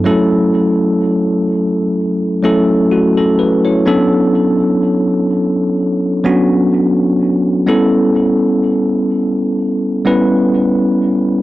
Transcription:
tine electric piano
0.04 F#3 A3 C#4 E4 A4
2.43 F#3 A3 C#4 E4 A4
2.91 A3 F#4
3.17 C#4 A4
3.39 B4
3.65 E4 C#5
3.86 F#3 B3 C#4 D4 A4
6.24 F#3 B3 C#4 D4 F#4
7.67 G3 B3 C#4 E4 A4
10.05 G3 B3 C#4 E4 B4

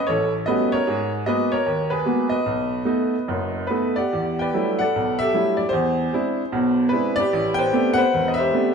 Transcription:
upright piano
0.07 A1 A4 C#5
0.46 G3 A3 B3 C#4 F#4 B4 D#5
0.72 A#4 C#5
0.87 G#2 G#3
1.26 G#3 A#3 B3 F#4 B4 D#5
1.52 A#4 C#5
1.66 D#2
1.90 G#4 B4
2.06 G#3 A#3 B3 F#4
2.29 B4 D#5
2.46 B1
2.85 A3 B3 D#4
3.28 F#1 F#2
3.67 A3 B3 D#4 B4
3.96 G4 D5 F#5
4.13 E2
4.39 B4 D5 G5
4.54 F#3 G3 A3 D4 E4
4.79 A4 D5 F#5
4.96 B1
5.19 G4 A4 E5
5.34 F#3 G3 A3 D4 E4
5.57 D5
5.69 C5
5.73 E2 G#4
6.13 G#3 C4 D4 E4
6.52 B1 B2
6.89 G#3 C4 D4 B4
6.93 E4
7.16 D5
7.20 G4 B4
7.33 A1
7.54 G5
7.58 B4 C5
7.73 A3 B3 C4 D4 G4
7.94 F#5
7.98 B4 C5
8.14 E1
8.28 D#5
8.34 E5
8.38 G4 C5
8.54 A3 B3 C4 D4 G4

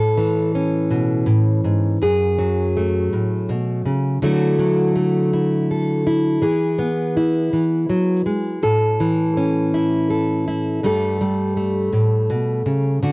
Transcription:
steel-string acoustic guitar
Already playing: A2 A4
0.18 E3
0.55 C#4
0.91 B2
1.26 A2
1.64 G#2
2.02 F#2 G#4
2.38 F#3
2.77 A3
3.13 A2
3.49 B2
3.85 C#3
4.22 D3 F#3 A3 E4 F#4
4.59 F#3
4.96 A3
5.33 E4
5.71 A4
6.07 E4
6.42 E3 G#4
6.79 B3
7.17 E4
7.53 E3
7.89 F#3
8.26 G#3
8.63 A2 A4
9.00 E3
9.37 C#4
9.74 E4
10.10 A4
10.48 E4
10.83 G2 G3 A3 A4
11.21 G3
11.57 A3
11.93 A2
12.30 B2
12.66 C#3
13.03 D3 F#4

